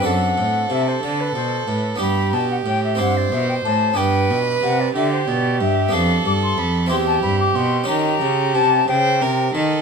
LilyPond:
<<
  \new Staff \with { instrumentName = "Flute" } { \time 6/8 \key g \major \tempo 4. = 61 fis''4 e''16 c''16 d''16 b'16 c''8 b'8 | b''8 a''16 fis''16 g''16 e''16 fis''16 d''16 e''16 g''16 a''8 | g''4 fis''16 d''16 e''16 c''16 d''8 e''8 | f''8 d'''16 c'''16 b''8 c'''16 a''16 b''16 d'''16 c'''8 |
bes''4 a''8 g''4 r8 | }
  \new Staff \with { instrumentName = "Violin" } { \time 6/8 \key g \major a'2. | g'4. c''4. | b'4. g'4. | a'4. g'4. |
g'4. c''8 bes'8 a'8 | }
  \new Staff \with { instrumentName = "Harpsichord" } { \time 6/8 \key g \major <c' d' a'>2. | <b d' g'>4. <c' e' g'>4. | <b d' g'>2. | <b d' g'>4. <c' e' g'>4. |
<des' g'>2. | }
  \new Staff \with { instrumentName = "Harpsichord" } { \clef bass \time 6/8 \key g \major fis,8 a,8 c8 d8 b,8 a,8 | g,8 b,8 a,8 g,8 b,8 a,8 | g,8 b,8 c8 d8 b,8 g,8 | f,8 g,8 f,8 e,8 g,8 b,8 |
ees8 des8 c8 des8 c8 ees8 | }
  \new Staff \with { instrumentName = "Cello" } { \clef bass \time 6/8 \key g \major fis,8 a,8 c8 d8 b,8 a,8 | g,8 b,8 a,8 g,8 b,8 a,8 | g,8 b,8 c8 d8 b,8 g,8 | f,8 g,8 f,8 e,8 g,8 b,8 |
ees8 des8 c8 des8 c8 ees8 | }
>>